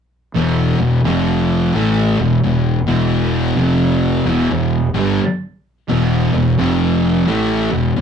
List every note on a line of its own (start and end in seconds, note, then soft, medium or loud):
0.34 0.75 E1 medium
0.34 0.78 E2 medium
0.34 0.78 B2 medium
0.34 0.78 E3 medium
0.79 1.03 E1 medium
0.79 1.00 E2 medium
0.79 1.00 B2 medium
1.04 1.70 F1 medium
1.04 1.73 F2 loud
1.04 1.74 C3 loud
1.04 1.74 F3 medium
1.74 2.15 A1 medium
1.74 2.16 A2 medium
1.74 2.17 E3 loud
1.74 2.17 A3 loud
2.18 2.42 E1 medium
2.18 2.38 E2 medium
2.18 2.38 B2 medium
2.43 2.84 E1 medium
2.43 2.78 E2 medium
2.43 2.78 B2 medium
2.87 3.52 E1 medium
2.87 3.55 E2 medium
2.87 3.55 B2 medium
2.87 3.55 E3 medium
3.56 4.21 F1 medium
3.56 4.24 F2 medium
3.56 4.24 C3 medium
3.56 4.24 F3 medium
4.25 4.49 E1 medium
4.25 4.50 E2 loud
4.25 4.51 B2 loud
4.25 4.51 E3 loud
4.51 4.91 E1 medium
4.51 4.86 E2 medium
4.51 4.86 B2 medium
4.94 5.18 G1 loud
4.94 5.19 G2 medium
4.94 5.20 D3 medium
4.94 5.20 G3 loud
5.89 6.30 E1 medium
5.89 6.32 E2 medium
5.89 6.32 B2 loud
5.89 6.32 E3 loud
6.33 6.57 E1 medium
6.33 6.53 E2 medium
6.33 6.54 B2 medium
6.58 7.24 F1 loud
6.58 7.27 F2 loud
6.58 7.26 C3 loud
6.58 7.26 F3 loud
7.27 7.68 A1 medium
7.27 7.70 A2 medium
7.27 7.69 E3 medium
7.27 7.70 A3 medium
7.71 7.95 E1 medium
7.71 7.92 E2 medium
7.71 7.92 B2 medium
7.96 8.01 E1 medium
7.96 8.01 E2 medium
7.96 8.01 B2 medium